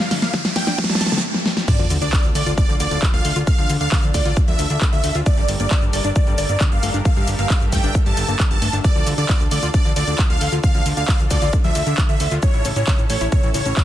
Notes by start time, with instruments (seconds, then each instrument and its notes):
Already playing: analog synth pad G2 G3 A#3 E4 A4, supersaw synth F5, riser
0.00 synth pluck G3
0.11 synth pluck D3, snare, open hi-hat
0.22 synth pluck A#3, supersaw synth F5, snare, closed hi-hat
0.34 synth pluck D3, kick, snare, closed hi-hat
0.45 synth pluck G3, snare, closed hi-hat
0.56 synth pluck A3, supersaw synth G5, kick, snare, open hi-hat
0.67 synth pluck D4, snare, closed hi-hat
0.78 synth pluck D3, kick, snare, closed hi-hat
0.84 snare
0.90 synth pluck G3, supersaw synth A5, snare, closed hi-hat
0.95 snare
1.01 synth pluck A3, snare, open hi-hat
1.06 snare
1.12 synth pluck D3, snare, closed hi-hat
1.18 snare
1.34 snare
1.46 snare
1.57 snare
1.68 synth pluck D3, analog synth pad D4 F4 A4, supersaw synth D5, kick, closed hi-hat, crash, sub drop, shaker
1.79 analog synth bass D2, synth pluck F3, closed hi-hat, shaker
1.90 analog synth bass D2, synth pluck D3, open hi-hat, shaker
2.02 analog synth bass D2, synth pluck D4, supersaw synth D5, closed hi-hat, shaker
2.13 synth pluck D3, kick, clap, closed hi-hat, shaker
2.24 analog synth bass D2, synth pluck F3, closed hi-hat, shaker
2.35 analog synth bass D2, synth pluck A3, supersaw synth D5, open hi-hat, shaker
2.46 analog synth bass D2, synth pluck F4, closed hi-hat, shaker
2.58 synth pluck D3, supersaw synth D5, kick, closed hi-hat, shaker
2.69 analog synth bass D2, synth pluck F3, closed hi-hat, shaker
2.80 analog synth bass D2, synth pluck D3, supersaw synth D5, open hi-hat, shaker
2.91 analog synth bass D2, synth pluck D4, closed hi-hat, shaker
3.02 synth pluck D3, kick, clap, closed hi-hat, shaker
3.14 analog synth bass D2, synth pluck F3, supersaw synth F5, closed hi-hat, shaker
3.25 analog synth bass D2, synth pluck A3, open hi-hat, shaker
3.36 analog synth bass D2, synth pluck F4, closed hi-hat, shaker
3.47 synth pluck D3, supersaw synth F5, kick, closed hi-hat, shaker
3.58 analog synth bass D2, synth pluck F3, closed hi-hat, shaker
3.70 analog synth bass D2, synth pluck D3, open hi-hat, shaker
3.81 analog synth bass D2, synth pluck D4, supersaw synth F5, closed hi-hat, shaker
3.92 synth pluck D3, kick, clap, closed hi-hat, shaker
4.03 analog synth bass D2, synth pluck F3, closed hi-hat, shaker
4.14 analog synth bass D2, synth pluck A3, supersaw synth D5, kick, open hi-hat, shaker
4.25 analog synth bass D2, synth pluck F4, closed hi-hat, shaker
4.37 synth pluck D3, kick, closed hi-hat, shaker
4.48 analog synth bass D2, synth pluck F3, supersaw synth E5, closed hi-hat, shaker
4.59 analog synth bass D2, synth pluck D3, open hi-hat, shaker
4.70 analog synth bass D2, synth pluck D4, closed hi-hat, shaker
4.81 synth pluck D3, kick, clap, closed hi-hat, shaker
4.93 analog synth bass D2, synth pluck F3, supersaw synth E5, closed hi-hat, shaker
5.04 analog synth bass D2, synth pluck A3, open hi-hat, shaker
5.15 analog synth bass D2, synth pluck F4, closed hi-hat, shaker
5.26 synth pluck D3, analog synth pad G3 G4 A#4 D5, supersaw synth D5, kick, closed hi-hat, shaker
5.37 analog synth bass G1, synth pluck G3, closed hi-hat, shaker
5.48 analog synth bass G1, synth pluck D3, open hi-hat, shaker
5.60 analog synth bass G1, synth pluck A#3, supersaw synth D5, closed hi-hat, shaker
5.71 synth pluck D3, kick, clap, closed hi-hat, shaker
5.82 analog synth bass G1, synth pluck G3, closed hi-hat, shaker
5.93 analog synth bass G1, synth pluck A3, supersaw synth D5, open hi-hat, shaker
6.04 analog synth bass G1, synth pluck D4, closed hi-hat, shaker
6.16 synth pluck D3, supersaw synth D5, kick, closed hi-hat, shaker
6.27 analog synth bass G1, synth pluck G3, closed hi-hat, shaker
6.38 analog synth bass G1, synth pluck D3, supersaw synth D5, open hi-hat, shaker
6.49 analog synth bass G1, synth pluck A#3, closed hi-hat, shaker
6.61 synth pluck D3, kick, clap, closed hi-hat, shaker
6.72 analog synth bass G1, synth pluck G3, supersaw synth F5, closed hi-hat, shaker
6.83 analog synth bass G1, synth pluck A3, open hi-hat, shaker
6.94 analog synth bass G1, synth pluck D4, closed hi-hat, shaker
7.05 synth pluck D3, analog synth pad E5, supersaw synth F5, kick, closed hi-hat, shaker
7.16 analog synth bass G1, synth pluck G3, closed hi-hat, shaker
7.28 analog synth bass G1, synth pluck D3, open hi-hat, shaker
7.39 analog synth bass G1, synth pluck A#3, supersaw synth F5, closed hi-hat, shaker
7.50 synth pluck D3, kick, clap, closed hi-hat, shaker
7.61 analog synth bass G1, synth pluck G3, closed hi-hat, shaker
7.72 analog synth bass G1, synth pluck A3, supersaw synth G5, kick, open hi-hat, shaker
7.84 analog synth bass G1, synth pluck D4, closed hi-hat, shaker
7.95 synth pluck D3, kick, closed hi-hat, shaker
8.06 analog synth bass G1, synth pluck G3, supersaw synth A5, closed hi-hat, shaker
8.17 analog synth bass G1, synth pluck D3, open hi-hat, shaker
8.28 analog synth bass G1, synth pluck A#3, closed hi-hat, shaker
8.40 synth pluck D3, kick, clap, closed hi-hat, shaker
8.51 analog synth bass G1, synth pluck G3, supersaw synth A5, closed hi-hat, shaker
8.62 analog synth bass G1, synth pluck A3, open hi-hat, shaker
8.73 analog synth bass G1, synth pluck D4, closed hi-hat, shaker
8.84 synth pluck D3, analog synth pad D4 F4, supersaw synth D5, kick, closed hi-hat, shaker
8.96 analog synth bass D2, synth pluck F3, closed hi-hat, shaker
9.07 analog synth bass D2, synth pluck D3, open hi-hat, shaker
9.18 analog synth bass D2, synth pluck D4, supersaw synth D5, closed hi-hat, shaker
9.29 synth pluck D3, kick, clap, closed hi-hat, shaker
9.40 analog synth bass D2, synth pluck F3, closed hi-hat, shaker
9.51 analog synth bass D2, synth pluck A3, supersaw synth D5, open hi-hat, shaker
9.63 analog synth bass D2, synth pluck F4, closed hi-hat, shaker
9.74 synth pluck D3, supersaw synth D5, kick, closed hi-hat, shaker
9.85 analog synth bass D2, synth pluck F3, closed hi-hat, shaker
9.96 analog synth bass D2, synth pluck D3, supersaw synth D5, open hi-hat, shaker
10.07 analog synth bass D2, synth pluck D4, closed hi-hat, shaker
10.19 synth pluck D3, kick, clap, closed hi-hat, shaker
10.30 analog synth bass D2, synth pluck F3, supersaw synth F5, closed hi-hat, shaker
10.41 analog synth bass D2, synth pluck A3, open hi-hat, shaker
10.52 analog synth bass D2, synth pluck F4, closed hi-hat, shaker
10.63 synth pluck D3, supersaw synth F5, kick, closed hi-hat, shaker
10.75 analog synth bass D2, synth pluck F3, closed hi-hat, shaker
10.86 analog synth bass D2, synth pluck D3, open hi-hat, shaker
10.97 analog synth bass D2, synth pluck D4, supersaw synth F5, closed hi-hat, shaker
11.08 synth pluck D3, kick, clap, closed hi-hat, shaker
11.19 analog synth bass D2, synth pluck F3, closed hi-hat, shaker
11.31 analog synth bass D2, synth pluck A3, supersaw synth D5, kick, open hi-hat, shaker
11.42 analog synth bass D2, synth pluck F4, closed hi-hat, shaker
11.53 synth pluck D3, kick, closed hi-hat, shaker
11.64 analog synth bass D2, synth pluck F3, supersaw synth E5, closed hi-hat, shaker
11.75 analog synth bass D2, synth pluck D3, open hi-hat, shaker
11.86 analog synth bass D2, synth pluck D4, closed hi-hat, shaker
11.98 synth pluck D3, kick, clap, closed hi-hat, shaker
12.09 analog synth bass D2, synth pluck F3, supersaw synth E5, closed hi-hat, shaker
12.20 analog synth bass D2, synth pluck A3, open hi-hat, shaker
12.31 analog synth bass D2, synth pluck F4, closed hi-hat, shaker
12.42 synth pluck C#3, analog synth pad C#4 E4 A4, supersaw synth C#5, kick, closed hi-hat, shaker
12.54 analog synth bass A1, synth pluck E3, closed hi-hat, shaker
12.65 analog synth bass A1, synth pluck C#3, open hi-hat, shaker
12.76 analog synth bass A1, synth pluck C#4, supersaw synth C#5, closed hi-hat, shaker
12.87 synth pluck C#3, kick, clap, closed hi-hat, shaker
12.99 analog synth bass A1, synth pluck E3, closed hi-hat, shaker
13.10 analog synth bass A1, synth pluck A3, supersaw synth C#5, open hi-hat, shaker
13.21 analog synth bass A1, synth pluck E4, closed hi-hat, shaker
13.32 synth pluck C#3, supersaw synth C#5, kick, closed hi-hat, shaker
13.43 analog synth bass A1, synth pluck E3, closed hi-hat, shaker
13.54 analog synth bass A1, synth pluck C#3, supersaw synth C#5, open hi-hat, shaker
13.66 analog synth bass A1, synth pluck C#4, closed hi-hat, shaker
13.77 synth pluck C#3, kick, clap, closed hi-hat, shaker